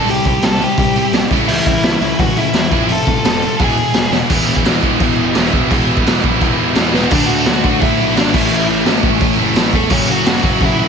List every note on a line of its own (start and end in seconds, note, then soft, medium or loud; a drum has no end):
0.00 0.40 C3 medium
0.00 0.41 G3 medium
0.00 0.41 C4 medium
0.00 0.43 E4 loud
0.07 0.18 C2 medium
0.07 0.24 C3 medium
0.07 0.25 G3 medium
0.07 0.25 G4 medium
0.07 0.26 G5 loud
0.07 open hi-hat medium
0.25 0.36 C2 medium
0.25 0.42 C3 medium
0.25 0.42 G3 medium
0.25 0.43 G4 medium
0.25 0.43 G5 medium
0.25 kick medium
0.25 open hi-hat medium
0.41 0.64 C2 loud
0.41 0.94 C3 medium
0.41 0.59 C3 medium
0.41 0.95 G3 medium
0.41 0.60 G3 medium
0.41 0.95 C4 medium
0.41 0.95 E4 medium
0.41 0.60 A4 medium
0.41 0.62 A5 loud
0.41 snare loud
0.41 open hi-hat medium
0.61 0.77 C3 medium
0.61 0.78 G3 medium
0.61 1.11 G4 medium
0.61 1.11 G5 medium
0.61 open hi-hat medium
0.78 1.00 C2 loud
0.78 0.96 C3 medium
0.78 0.96 G3 medium
0.78 kick loud
0.78 open hi-hat medium
0.95 1.13 C3 medium
0.95 1.30 C3 medium
0.95 1.31 G3 medium
0.95 1.13 G3 medium
0.95 1.31 C4 medium
0.95 1.30 E4 medium
0.95 open hi-hat medium
1.12 1.23 C2 medium
1.12 1.30 C3 medium
1.12 1.30 G3 medium
1.12 snare loud
1.12 open hi-hat medium
1.30 1.41 C#2 medium
1.30 1.47 A2 medium
1.30 1.82 C#3 medium
1.30 1.48 E3 loud
1.30 1.83 A3 medium
1.30 1.49 A3 loud
1.30 1.84 C#4 loud
1.30 1.84 E4 loud
1.30 kick loud
1.30 open hi-hat medium
1.47 1.59 C#2 medium
1.47 1.65 A2 medium
1.47 1.65 E3 medium
1.47 1.98 E4 medium
1.47 1.98 E5 medium
1.47 crash loud
1.66 1.77 C#2 medium
1.66 1.82 A2 medium
1.66 1.83 E3 medium
1.66 kick medium
1.66 open hi-hat medium
1.83 1.94 C#2 loud
1.83 2.00 A2 medium
1.83 2.36 C#3 medium
1.83 2.01 E3 medium
1.83 2.36 A3 medium
1.83 2.36 C#4 medium
1.83 2.36 E4 medium
1.83 snare loud
1.83 open hi-hat medium
2.01 2.12 C#2 medium
2.01 2.18 A2 medium
2.01 2.19 E3 medium
2.01 2.18 E4 medium
2.01 2.20 E5 medium
2.01 open hi-hat medium
2.19 2.30 C#2 medium
2.19 2.36 A2 medium
2.19 2.36 E3 medium
2.19 2.36 F#4 medium
2.19 2.38 F#5 medium
2.19 kick loud
2.19 open hi-hat medium
2.35 2.47 C#2 medium
2.35 2.53 A2 medium
2.35 2.54 E3 medium
2.35 2.71 C#4 medium
2.35 2.71 E4 medium
2.35 2.87 E4 medium
2.35 2.92 E5 loud
2.35 open hi-hat medium
2.39 2.71 C#3 medium
2.39 2.72 A3 medium
2.53 2.72 E2 medium
2.53 2.70 A2 medium
2.53 2.71 E3 medium
2.53 snare loud
2.53 open hi-hat medium
2.71 2.82 F1 medium
2.71 2.89 F2 medium
2.71 2.89 C3 medium
2.71 3.23 F3 medium
2.71 2.89 F3 loud
2.71 3.24 A3 medium
2.71 3.25 C4 loud
2.71 3.25 F4 medium
2.71 kick loud
2.71 open hi-hat medium
2.88 2.99 F1 loud
2.88 3.06 F2 medium
2.88 3.06 C3 medium
2.88 3.57 A4 medium
2.88 open hi-hat medium
2.92 3.63 A5 loud
3.07 3.18 F1 medium
3.07 3.24 F2 medium
3.07 3.24 C3 medium
3.07 kick medium
3.07 open hi-hat medium
3.24 3.46 F1 loud
3.24 3.41 F2 medium
3.24 3.41 C3 medium
3.24 3.59 F3 medium
3.24 3.59 A3 medium
3.24 3.59 C4 medium
3.24 3.60 F4 medium
3.24 snare loud
3.24 open hi-hat medium
3.42 3.59 F2 medium
3.42 3.59 C3 medium
3.42 open hi-hat medium
3.59 3.81 E1 loud
3.59 3.76 E2 medium
3.59 3.77 B2 medium
3.59 4.11 E3 medium
3.59 3.77 E3 medium
3.59 4.12 G#3 loud
3.59 4.12 B3 loud
3.59 4.11 E4 loud
3.59 4.10 G#4 medium
3.59 kick loud
3.59 open hi-hat medium
3.64 4.11 G#5 loud
3.77 3.93 E2 medium
3.77 3.94 B2 medium
3.77 open hi-hat medium
3.93 4.04 E1 medium
3.93 4.11 E2 medium
3.93 4.12 B2 loud
3.93 snare loud
3.93 open hi-hat medium
4.10 4.22 E1 loud
4.10 4.29 E2 medium
4.10 4.29 B2 medium
4.10 4.30 G#3 medium
4.10 4.30 B3 medium
4.10 4.29 E4 loud
4.10 snare medium
4.15 4.29 E3 medium
4.30 4.45 E1 medium
4.30 4.65 E2 loud
4.30 4.65 B2 loud
4.30 4.85 E3 medium
4.30 4.65 E3 loud
4.30 4.84 G#3 medium
4.30 4.83 B3 medium
4.30 4.83 E4 loud
4.30 4.82 G#4 loud
4.30 kick loud
4.30 crash loud
4.30 crash medium
4.47 4.62 E1 medium
4.56 kick medium
4.65 4.80 E1 loud
4.65 4.83 E2 medium
4.65 4.83 B2 medium
4.65 4.84 E3 medium
4.65 snare loud
4.65 crash medium
4.82 4.97 E1 medium
4.82 4.98 E2 medium
4.82 5.00 B2 medium
4.82 5.00 E3 loud
4.82 5.34 E3 medium
4.82 5.35 G#3 medium
4.82 5.35 B3 medium
4.82 5.35 E4 medium
4.82 5.34 G#4 medium
4.82 kick medium
5.00 5.14 E1 medium
5.00 5.35 E2 loud
5.00 5.35 B2 loud
5.00 5.35 E3 loud
5.00 kick loud
5.00 crash medium
5.16 5.32 E1 medium
5.33 5.49 E1 medium
5.33 5.51 E2 medium
5.33 5.52 B2 medium
5.33 5.68 E3 medium
5.33 5.52 E3 loud
5.33 5.69 G#3 medium
5.33 5.69 B3 medium
5.33 5.70 E4 medium
5.33 snare loud
5.33 crash medium
5.38 5.70 G#4 medium
5.52 5.68 E1 loud
5.52 5.68 E2 medium
5.52 5.69 B2 medium
5.52 5.69 E3 medium
5.52 kick medium
5.69 5.99 E1 medium
5.69 6.04 E2 loud
5.69 6.05 B2 loud
5.69 6.21 E3 medium
5.69 6.05 E3 loud
5.69 6.22 G#3 loud
5.69 6.22 B3 loud
5.69 6.23 E4 loud
5.69 6.23 G#4 loud
5.69 kick loud
5.69 crash medium
5.97 kick medium
6.05 6.21 E1 loud
6.05 6.22 E2 medium
6.05 6.22 B2 medium
6.05 6.23 E3 medium
6.05 snare loud
6.05 crash medium
6.23 6.38 B1 medium
6.23 6.40 E2 medium
6.23 6.39 B2 medium
6.23 6.40 E3 medium
6.23 6.74 E3 medium
6.23 6.75 G#3 medium
6.23 6.76 B3 medium
6.23 6.76 E4 medium
6.23 6.75 G#4 medium
6.23 kick loud
6.40 6.55 E1 loud
6.40 6.75 E2 medium
6.40 6.75 B2 loud
6.40 6.76 E3 loud
6.40 kick loud
6.40 crash medium
6.59 6.73 E1 medium
6.75 6.91 E2 medium
6.75 6.93 E2 medium
6.75 6.93 B2 medium
6.75 7.10 E3 medium
6.75 6.93 E3 medium
6.75 7.10 G#3 medium
6.75 7.11 B3 medium
6.75 7.11 E4 medium
6.75 7.11 G#4 loud
6.75 snare loud
6.75 crash medium
6.94 7.08 E1 medium
6.94 7.10 E2 medium
6.94 7.10 B2 medium
6.94 7.11 E3 medium
6.94 7.11 B3 medium
6.94 7.11 B4 medium
6.94 snare medium
7.11 7.28 D2 loud
7.11 7.63 D3 loud
7.11 7.65 A3 loud
7.11 7.64 A3 loud
7.11 7.28 D4 medium
7.11 7.63 D4 loud
7.11 7.62 D4 loud
7.11 7.63 F#4 loud
7.11 7.29 D5 loud
7.11 kick loud
7.11 crash loud
7.26 7.46 D2 loud
7.26 7.61 F#4 medium
7.26 7.62 F#5 loud
7.45 7.63 D2 loud
7.45 snare loud
7.45 open hi-hat medium
7.63 7.81 D2 medium
7.63 8.15 D3 medium
7.63 8.34 D3 medium
7.63 8.17 A3 medium
7.63 8.35 A3 medium
7.63 8.15 D4 medium
7.63 8.33 D4 medium
7.63 8.33 F#4 loud
7.63 7.81 F#4 medium
7.63 7.81 F#5 loud
7.63 kick loud
7.81 7.98 D2 loud
7.81 8.16 E4 medium
7.81 8.17 E5 loud
7.81 kick loud
7.81 open hi-hat medium
7.99 8.15 B1 loud
8.15 8.33 G#1 medium
8.15 8.32 D3 medium
8.15 8.34 A3 medium
8.15 8.34 D4 medium
8.15 8.33 D5 loud
8.15 snare loud
8.15 open hi-hat medium
8.19 8.34 D4 medium
8.33 8.50 A1 loud
8.33 8.84 A2 loud
8.33 8.84 A2 medium
8.33 8.85 E3 loud
8.33 8.86 E3 medium
8.33 8.87 A3 loud
8.33 8.86 A3 loud
8.33 8.87 C#4 loud
8.33 8.86 E4 loud
8.33 8.68 E4 medium
8.33 8.67 E5 medium
8.33 kick loud
8.33 crash loud
8.50 8.67 A1 loud
8.68 8.85 A1 loud
8.85 9.02 A1 loud
8.85 9.37 A2 medium
8.85 9.73 A2 medium
8.85 9.37 E3 medium
8.85 9.73 E3 medium
8.85 9.90 A3 medium
8.85 9.37 A3 medium
8.85 9.91 C#4 medium
8.85 9.74 E4 medium
8.85 snare loud
8.85 open hi-hat medium
9.03 9.20 A1 medium
9.03 kick loud
9.20 9.37 A1 loud
9.20 kick loud
9.20 open hi-hat medium
9.37 9.54 F#1 loud
9.37 9.73 A2 medium
9.37 9.73 E3 medium
9.37 10.88 A3 medium
9.55 9.72 A1 medium
9.55 snare loud
9.55 open hi-hat medium
9.73 9.92 E2 loud
9.73 9.93 A4 loud
9.73 kick medium
9.77 9.92 A3 medium
9.89 10.08 F#1 medium
9.89 10.42 F#2 loud
9.89 10.43 C#3 loud
9.89 10.42 F#3 loud
9.89 10.43 A3 loud
9.89 10.07 C#4 medium
9.89 10.43 C#4 loud
9.89 10.41 F#4 loud
9.89 10.10 C#5 loud
9.89 kick loud
9.89 crash loud
10.09 10.25 F#1 loud
10.09 10.26 F#4 medium
10.09 10.26 F#5 loud
10.26 10.42 F#1 loud
10.26 10.44 F#4 medium
10.26 10.44 F#5 loud
10.26 snare loud
10.26 open hi-hat medium
10.42 10.60 F#1 medium
10.42 10.88 F#2 medium
10.42 10.88 C#3 medium
10.42 10.88 F#3 loud
10.42 10.88 F#3 medium
10.42 10.88 A3 medium
10.42 10.88 C#4 medium
10.42 10.88 F#4 medium
10.42 10.61 F#4 medium
10.42 10.63 F#5 medium
10.42 kick loud
10.60 10.78 F#1 loud
10.60 kick loud
10.60 open hi-hat medium
10.64 10.88 E4 medium
10.64 10.88 E5 loud
10.79 10.88 E1 medium